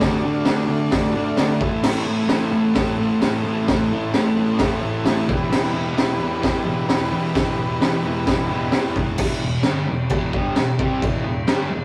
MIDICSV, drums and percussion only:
0, 0, Header, 1, 2, 480
1, 0, Start_track
1, 0, Key_signature, 1, "minor"
1, 0, Tempo, 458716
1, 21, Time_signature, 4, 2, 24, 8
1, 12396, End_track
2, 0, Start_track
2, 0, Title_t, "Drums"
2, 10, Note_on_c, 9, 38, 120
2, 13, Note_on_c, 9, 36, 110
2, 13, Note_on_c, 9, 46, 66
2, 115, Note_off_c, 9, 38, 0
2, 117, Note_off_c, 9, 36, 0
2, 118, Note_off_c, 9, 46, 0
2, 472, Note_on_c, 9, 38, 127
2, 475, Note_on_c, 9, 46, 69
2, 577, Note_off_c, 9, 38, 0
2, 580, Note_off_c, 9, 46, 0
2, 957, Note_on_c, 9, 38, 116
2, 960, Note_on_c, 9, 46, 68
2, 966, Note_on_c, 9, 36, 110
2, 1062, Note_off_c, 9, 38, 0
2, 1065, Note_off_c, 9, 46, 0
2, 1071, Note_off_c, 9, 36, 0
2, 1433, Note_on_c, 9, 38, 121
2, 1436, Note_on_c, 9, 46, 63
2, 1538, Note_off_c, 9, 38, 0
2, 1541, Note_off_c, 9, 46, 0
2, 1681, Note_on_c, 9, 36, 117
2, 1786, Note_off_c, 9, 36, 0
2, 1916, Note_on_c, 9, 38, 116
2, 1919, Note_on_c, 9, 49, 113
2, 2021, Note_off_c, 9, 38, 0
2, 2024, Note_off_c, 9, 49, 0
2, 2393, Note_on_c, 9, 38, 115
2, 2396, Note_on_c, 9, 46, 68
2, 2498, Note_off_c, 9, 38, 0
2, 2501, Note_off_c, 9, 46, 0
2, 2875, Note_on_c, 9, 38, 114
2, 2878, Note_on_c, 9, 46, 77
2, 2885, Note_on_c, 9, 36, 117
2, 2980, Note_off_c, 9, 38, 0
2, 2983, Note_off_c, 9, 46, 0
2, 2990, Note_off_c, 9, 36, 0
2, 3362, Note_on_c, 9, 38, 113
2, 3365, Note_on_c, 9, 46, 68
2, 3467, Note_off_c, 9, 38, 0
2, 3470, Note_off_c, 9, 46, 0
2, 3849, Note_on_c, 9, 38, 127
2, 3852, Note_on_c, 9, 46, 73
2, 3854, Note_on_c, 9, 36, 113
2, 3954, Note_off_c, 9, 38, 0
2, 3957, Note_off_c, 9, 46, 0
2, 3959, Note_off_c, 9, 36, 0
2, 4326, Note_on_c, 9, 38, 118
2, 4330, Note_on_c, 9, 46, 64
2, 4431, Note_off_c, 9, 38, 0
2, 4434, Note_off_c, 9, 46, 0
2, 4798, Note_on_c, 9, 38, 114
2, 4802, Note_on_c, 9, 46, 69
2, 4812, Note_on_c, 9, 36, 121
2, 4903, Note_off_c, 9, 38, 0
2, 4906, Note_off_c, 9, 46, 0
2, 4916, Note_off_c, 9, 36, 0
2, 5288, Note_on_c, 9, 38, 123
2, 5291, Note_on_c, 9, 46, 69
2, 5392, Note_off_c, 9, 38, 0
2, 5395, Note_off_c, 9, 46, 0
2, 5536, Note_on_c, 9, 36, 120
2, 5641, Note_off_c, 9, 36, 0
2, 5778, Note_on_c, 9, 38, 126
2, 5782, Note_on_c, 9, 49, 99
2, 5883, Note_off_c, 9, 38, 0
2, 5886, Note_off_c, 9, 49, 0
2, 6255, Note_on_c, 9, 38, 117
2, 6258, Note_on_c, 9, 46, 65
2, 6360, Note_off_c, 9, 38, 0
2, 6363, Note_off_c, 9, 46, 0
2, 6733, Note_on_c, 9, 36, 115
2, 6738, Note_on_c, 9, 38, 118
2, 6741, Note_on_c, 9, 46, 67
2, 6838, Note_off_c, 9, 36, 0
2, 6843, Note_off_c, 9, 38, 0
2, 6846, Note_off_c, 9, 46, 0
2, 7210, Note_on_c, 9, 38, 124
2, 7213, Note_on_c, 9, 46, 75
2, 7315, Note_off_c, 9, 38, 0
2, 7318, Note_off_c, 9, 46, 0
2, 7694, Note_on_c, 9, 36, 124
2, 7696, Note_on_c, 9, 38, 120
2, 7700, Note_on_c, 9, 46, 78
2, 7799, Note_off_c, 9, 36, 0
2, 7801, Note_off_c, 9, 38, 0
2, 7804, Note_off_c, 9, 46, 0
2, 8176, Note_on_c, 9, 38, 111
2, 8179, Note_on_c, 9, 46, 75
2, 8281, Note_off_c, 9, 38, 0
2, 8284, Note_off_c, 9, 46, 0
2, 8654, Note_on_c, 9, 36, 123
2, 8654, Note_on_c, 9, 38, 123
2, 8657, Note_on_c, 9, 46, 66
2, 8759, Note_off_c, 9, 36, 0
2, 8759, Note_off_c, 9, 38, 0
2, 8762, Note_off_c, 9, 46, 0
2, 9121, Note_on_c, 9, 38, 119
2, 9124, Note_on_c, 9, 46, 65
2, 9225, Note_off_c, 9, 38, 0
2, 9229, Note_off_c, 9, 46, 0
2, 9373, Note_on_c, 9, 36, 91
2, 9478, Note_off_c, 9, 36, 0
2, 9602, Note_on_c, 9, 49, 127
2, 9602, Note_on_c, 9, 57, 65
2, 9613, Note_on_c, 9, 36, 123
2, 9707, Note_off_c, 9, 49, 0
2, 9707, Note_off_c, 9, 57, 0
2, 9717, Note_off_c, 9, 36, 0
2, 10074, Note_on_c, 9, 38, 121
2, 10077, Note_on_c, 9, 57, 67
2, 10178, Note_off_c, 9, 38, 0
2, 10181, Note_off_c, 9, 57, 0
2, 10561, Note_on_c, 9, 57, 70
2, 10574, Note_on_c, 9, 36, 113
2, 10666, Note_off_c, 9, 57, 0
2, 10678, Note_off_c, 9, 36, 0
2, 10813, Note_on_c, 9, 36, 109
2, 10918, Note_off_c, 9, 36, 0
2, 11046, Note_on_c, 9, 38, 117
2, 11049, Note_on_c, 9, 57, 72
2, 11151, Note_off_c, 9, 38, 0
2, 11154, Note_off_c, 9, 57, 0
2, 11293, Note_on_c, 9, 36, 119
2, 11397, Note_off_c, 9, 36, 0
2, 11536, Note_on_c, 9, 36, 118
2, 11543, Note_on_c, 9, 57, 72
2, 11640, Note_off_c, 9, 36, 0
2, 11648, Note_off_c, 9, 57, 0
2, 12006, Note_on_c, 9, 38, 113
2, 12009, Note_on_c, 9, 57, 72
2, 12111, Note_off_c, 9, 38, 0
2, 12114, Note_off_c, 9, 57, 0
2, 12396, End_track
0, 0, End_of_file